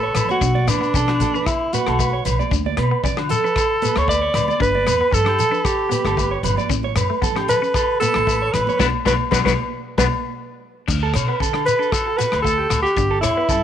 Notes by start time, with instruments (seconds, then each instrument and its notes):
Already playing: upright bass A1, alto saxophone A4
0.03 clean electric guitar C#5
0.15 upright bass A1, clean electric guitar B4, cross-stick, closed hi-hat, low conga, low agogo, shekere
0.29 alto saxophone F#4, clean electric guitar C#5, high conga, shekere
0.41 upright bass B1, clean electric guitar D4, kick, shekere
0.55 clean electric guitar D5, high conga
0.67 upright bass A2, alto saxophone D4, clean electric guitar B4, cross-stick, closed hi-hat, low conga, low agogo, shekere
0.81 clean electric guitar B3, shekere
0.94 upright bass B2, clean electric guitar C#4 A4, kick, low conga, shekere
1.08 clean electric guitar D4 F#4, cross-stick, low agogo
1.20 clean electric guitar A4, kick, closed hi-hat, high conga, low conga, shekere
1.34 clean electric guitar D4 B4, shekere
1.46 alto saxophone E4, muted clean electric guitar stroke, kick, cross-stick, low agogo, shekere
1.73 alto saxophone F#4, clean electric guitar B4, closed hi-hat, high conga, shekere
1.87 upright bass B1, clean electric guitar A3 A4, cross-stick, low agogo
1.99 clean electric guitar A3 B4, kick, shekere
2.13 clean electric guitar C#5
2.25 upright bass B1, clean electric guitar B4, closed hi-hat, low conga, low agogo, shekere
2.39 clean electric guitar D5, high conga, shekere
2.51 upright bass D2, clean electric guitar D4, kick, shekere
2.66 clean electric guitar D5, high conga
2.77 upright bass B2, clean electric guitar B4, cross-stick, closed hi-hat, low agogo
2.91 clean electric guitar B3
3.04 upright bass D3, clean electric guitar C#4 D5, kick, low conga, shekere
3.17 clean electric guitar D4 F#4, cross-stick, low agogo
3.29 clean electric guitar A4, alto saxophone A4, closed hi-hat, low conga, shekere
3.44 clean electric guitar B4, muted clean electric guitar stroke, shekere
3.56 clean electric guitar A4, kick, cross-stick, low agogo, shekere
3.82 clean electric guitar B4, closed hi-hat, high conga, shekere
3.96 upright bass D2, clean electric guitar A3 A4, alto saxophone C#5, cross-stick, low agogo, shekere
4.08 clean electric guitar A3 B4, alto saxophone D5, kick, shekere
4.22 clean electric guitar C#5
4.34 upright bass D2, clean electric guitar B4, cross-stick, closed hi-hat, low conga, low agogo, shekere
4.48 clean electric guitar D5, high conga, shekere
4.60 upright bass G1, clean electric guitar D4, alto saxophone B4, kick, shekere
4.75 clean electric guitar D5, high conga
4.87 upright bass E2, clean electric guitar B4, cross-stick, closed hi-hat, low agogo, shekere
5.01 clean electric guitar B3
5.11 upright bass G2, clean electric guitar C#4 A4, alto saxophone A4, kick, low conga, shekere
5.25 clean electric guitar D4 G4, cross-stick, low agogo
5.39 clean electric guitar A4, closed hi-hat, low conga, shekere
5.51 clean electric guitar D4 B4, shekere
5.65 alto saxophone G4, clean electric guitar A4, kick, cross-stick, low agogo, shekere
5.89 clean electric guitar B3 B4, closed hi-hat, high conga, shekere
6.04 upright bass G1, clean electric guitar A3 A4, cross-stick, low agogo, shekere
6.17 clean electric guitar A3 B4, kick, shekere
6.31 clean electric guitar C#5
6.43 upright bass G1, clean electric guitar B4, closed hi-hat, low conga, low agogo, shekere
6.57 clean electric guitar D5, high conga, shekere
6.69 upright bass A1, clean electric guitar C#4, kick, shekere
6.83 clean electric guitar C#5, high conga
6.95 upright bass F#2, clean electric guitar B4, cross-stick, closed hi-hat, low agogo, shekere
7.10 clean electric guitar A3
7.22 upright bass A2, clean electric guitar B3 A4, kick, low conga, shekere
7.36 clean electric guitar C#4 G4, cross-stick, low agogo
7.48 clean electric guitar A4, alto saxophone B4, closed hi-hat, low conga, shekere
7.62 clean electric guitar C#4, muted clean electric guitar stroke, shekere
7.74 clean electric guitar A4, kick, cross-stick, low agogo, shekere
8.00 clean electric guitar B3 B4, alto saxophone A4, closed hi-hat, high conga, shekere
8.14 upright bass A1, clean electric guitar A3 A4, cross-stick, low agogo, shekere
8.27 clean electric guitar A3 B4, kick, shekere
8.42 clean electric guitar C#5
8.52 upright bass A1, alto saxophone B4, clean electric guitar B4, cross-stick, closed hi-hat, low conga, low agogo, shekere
8.67 clean electric guitar C#5, high conga, shekere
8.79 upright bass B1, clean electric guitar F#3 B3 D4 F#4 B4 D5, alto saxophone B4, kick, snare, high conga, low agogo, shekere
9.05 upright bass B1, clean electric guitar F#3 B3 D4 F#4 B4 D5, alto saxophone B4, kick, snare, high conga, low agogo, shekere
9.31 upright bass B1, clean electric guitar F#3 B3 D4 F#4 B4 D5, alto saxophone B4, kick, snare, high conga, low agogo, shekere
9.44 upright bass B1, clean electric guitar F#3 B3 D4 F#4 B4 D5, alto saxophone B4, kick, snare, high conga, low agogo, shekere
9.98 upright bass B1, clean electric guitar F#3 B3 D4 F#4 B4 D5, alto saxophone B4, kick, snare, high conga, low agogo, shekere
10.88 upright bass D2, clean electric guitar D4, kick, crash, shekere
11.03 clean electric guitar A4
11.14 upright bass B2, clean electric guitar C#5, cross-stick, closed hi-hat, low agogo, shekere
11.28 clean electric guitar B3 B4
11.40 upright bass D3, clean electric guitar C#4 A4, kick, shekere
11.53 clean electric guitar D4, cross-stick, low agogo
11.66 alto saxophone B4, clean electric guitar B4, closed hi-hat, shekere
11.79 clean electric guitar D4 A4, shekere
11.92 clean electric guitar F#4, alto saxophone A4, kick, cross-stick, low agogo, shekere
12.06 clean electric guitar A4
12.17 clean electric guitar B3 F#4, alto saxophone B4, closed hi-hat, shekere
12.32 upright bass D2, clean electric guitar A3, cross-stick, low agogo, shekere
12.42 clean electric guitar A3 A4, alto saxophone A4, kick
12.46 shekere
12.58 clean electric guitar G4
12.70 upright bass D2, clean electric guitar F#4, cross-stick, closed hi-hat, low agogo, shekere
12.82 clean electric guitar F#4, alto saxophone G4, shekere
12.96 upright bass G1, clean electric guitar D4, kick, shekere
13.11 clean electric guitar A4
13.21 upright bass E2, alto saxophone E4, clean electric guitar C#5, cross-stick, closed hi-hat, low agogo, shekere
13.37 clean electric guitar B3 B4
13.49 upright bass G2, clean electric guitar C#4 A4, kick, shekere